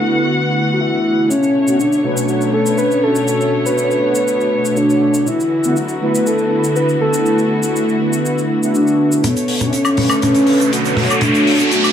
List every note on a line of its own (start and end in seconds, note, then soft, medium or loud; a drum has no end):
0.00 1.27 D3 medium
0.00 1.27 B3 medium
0.00 1.26 F#4 medium
0.00 1.28 F#5 medium
0.05 1.28 D3 medium
0.05 1.29 A3 medium
0.05 1.29 B3 medium
0.05 1.29 E4 medium
0.05 1.29 F#4 medium
0.74 0.82 F#4 medium
0.80 1.32 E4 loud
1.30 5.23 B2 medium
1.30 5.23 D3 medium
1.30 5.23 A3 medium
1.30 1.81 C#4 medium
1.30 5.23 C#5 medium
1.30 cabasa medium
1.43 cabasa soft
1.67 1.78 B2 medium
1.67 1.78 A3 medium
1.67 1.78 C#4 medium
1.67 1.79 D4 medium
1.67 1.79 F#4 loud
1.67 cabasa medium
1.80 2.06 D4 medium
1.80 cabasa medium
1.93 cabasa soft
2.03 3.00 B2 medium
2.03 3.01 A3 medium
2.03 3.01 C#4 medium
2.03 3.01 D4 medium
2.03 2.28 F#4 medium
2.03 3.01 B4 medium
2.17 cabasa medium
2.28 2.55 F#4 loud
2.28 cabasa medium
2.41 cabasa soft
2.54 2.77 A4 loud
2.66 cabasa medium
2.78 3.02 B4 loud
2.78 cabasa medium
2.91 cabasa soft
3.02 3.62 B2 medium
3.02 3.63 A3 medium
3.02 3.63 C#4 medium
3.02 3.63 D4 medium
3.02 3.63 F#4 loud
3.02 3.27 A4 loud
3.15 cabasa medium
3.28 3.63 A4 loud
3.28 cabasa medium
3.41 cabasa soft
3.65 4.00 B2 medium
3.65 4.00 A3 medium
3.65 4.00 C#4 medium
3.65 4.00 D4 medium
3.65 4.00 F#4 medium
3.65 3.77 B4 medium
3.65 cabasa medium
3.78 4.79 B4 loud
3.78 cabasa medium
3.91 cabasa soft
4.01 5.25 B2 medium
4.01 5.25 A3 medium
4.01 5.25 D4 medium
4.01 5.26 F#4 medium
4.01 5.25 C#5 medium
4.15 cabasa medium
4.28 cabasa medium
4.41 cabasa soft
4.65 cabasa medium
4.77 5.29 D4 medium
4.77 cabasa medium
4.90 cabasa soft
5.14 cabasa medium
5.26 9.19 D3 medium
5.26 9.20 B3 medium
5.26 9.20 E4 medium
5.26 5.78 E4 loud
5.26 9.20 F#4 medium
5.26 cabasa medium
5.40 cabasa soft
5.64 5.75 D3 medium
5.64 5.75 A3 medium
5.64 5.75 B3 medium
5.64 5.76 E4 medium
5.64 5.76 F#4 loud
5.64 cabasa medium
5.76 6.28 F#4 medium
5.76 cabasa medium
5.89 cabasa soft
6.00 6.97 D3 medium
6.00 6.97 A3 medium
6.00 6.98 B3 medium
6.00 6.98 E4 medium
6.00 6.98 B4 loud
6.15 cabasa medium
6.27 6.76 A4 loud
6.27 cabasa medium
6.38 cabasa soft
6.64 cabasa medium
6.76 6.87 B4 loud
6.76 cabasa medium
6.89 cabasa soft
7.00 7.59 D3 medium
7.00 7.60 A3 medium
7.00 7.60 B3 medium
7.00 7.60 E4 medium
7.00 7.60 F#4 loud
7.00 7.96 A4 loud
7.13 cabasa medium
7.26 cabasa medium
7.38 cabasa soft
7.62 7.97 D3 medium
7.62 7.97 A3 medium
7.62 7.97 B3 medium
7.62 7.97 E4 medium
7.62 7.97 F#4 medium
7.62 cabasa medium
7.76 cabasa medium
7.89 cabasa soft
7.99 8.59 D3 medium
7.99 8.59 A3 medium
7.99 8.59 B3 medium
7.99 8.60 E4 medium
7.99 8.60 F#4 medium
8.13 cabasa medium
8.26 cabasa medium
8.38 cabasa soft
8.61 9.22 D3 medium
8.61 9.22 A3 medium
8.61 9.22 B3 medium
8.61 9.23 E4 medium
8.61 9.23 F#4 loud
8.61 cabasa medium
8.75 9.26 D4 loud
8.75 cabasa medium
8.87 cabasa soft
9.12 cabasa medium
9.23 11.92 B2 medium
9.23 11.92 D3 medium
9.23 11.92 A3 medium
9.23 9.75 B3 loud
9.23 11.20 C#5 medium
9.23 closed hi-hat loud
9.23 mid tom soft
9.23 riser medium
9.23 shaker medium
9.37 closed hi-hat medium
9.37 shaker medium
9.48 open hi-hat loud
9.61 9.72 A3 medium
9.61 9.72 C#4 medium
9.61 9.72 D4 medium
9.61 9.72 F#4 loud
9.61 closed hi-hat soft
9.61 mid tom soft
9.61 shaker medium
9.73 10.22 C#4 loud
9.73 closed hi-hat medium
9.73 shaker medium
9.85 closed hi-hat medium
9.85 high woodblock medium
9.85 shaker soft
9.97 10.94 D3 medium
9.97 10.94 A3 medium
9.97 10.94 C#4 medium
9.97 10.95 B4 loud
9.97 open hi-hat loud
9.97 mid tom soft
10.09 closed hi-hat medium
10.09 high woodblock medium
10.09 shaker medium
10.22 10.69 C#4 loud
10.22 closed hi-hat medium
10.22 mid tom soft
10.22 shaker medium
10.35 closed hi-hat soft
10.35 shaker medium
10.47 open hi-hat loud
10.60 closed hi-hat medium
10.60 shaker medium
10.73 11.24 F#4 loud
10.73 closed hi-hat medium
10.73 shaker medium
10.85 closed hi-hat medium
10.85 shaker soft
10.96 11.56 A3 medium
10.96 11.57 D4 medium
10.96 11.57 F#4 loud
10.96 11.56 C#5 medium
10.96 open hi-hat loud
10.96 mid tom medium
11.10 closed hi-hat soft
11.10 high woodblock medium
11.10 shaker medium
11.21 11.92 B3 medium
11.21 11.71 D4 loud
11.21 closed hi-hat medium
11.21 mid tom medium
11.21 shaker medium
11.35 closed hi-hat medium
11.35 shaker soft
11.47 open hi-hat loud
11.59 11.92 A3 medium
11.59 11.92 C#4 medium
11.59 11.92 D4 medium
11.59 11.92 F#4 medium
11.59 closed hi-hat soft
11.59 shaker medium
11.71 11.92 F#4 loud
11.71 closed hi-hat medium
11.71 shaker medium
11.84 closed hi-hat medium
11.84 high woodblock medium
11.84 shaker soft